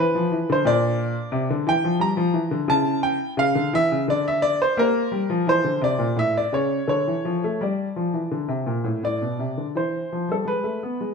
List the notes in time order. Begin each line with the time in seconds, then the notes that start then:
Already playing: E3
0.00 B4
0.15 F3
0.32 E3
0.50 D3 C5
0.65 A#2 D4 D5
1.32 C3
1.50 D3
1.67 E3 G5
1.85 F3
2.00 G3 A#5
2.17 F3
2.34 E3
2.51 D3
2.68 C#3 E4 A5
3.03 G5
3.37 C#3 F5
3.55 D3
3.73 E3 E5
3.92 C#3
4.08 D3 D5
4.28 E5
4.42 D5
4.62 C5
4.77 A#3 G4 A#4
5.12 G3
5.30 F3
5.47 E3 C5
5.64 D3
5.81 C3 D5
5.99 A#2
6.16 A2 E5
6.37 D5
6.53 C#3 C#5
6.87 D3 A4 C#5
7.07 E3
7.25 F3
7.44 A3
7.61 G3 D5
7.96 F3
8.14 E3
8.31 D3
8.48 C3
8.66 A#2
8.84 A2
9.04 A2 D5
9.22 B2
9.39 C3
9.58 D3
9.75 E3 C5
10.12 F3
10.29 G3 A4
10.45 G#3 B4
10.64 A3
10.83 B3
11.01 G#3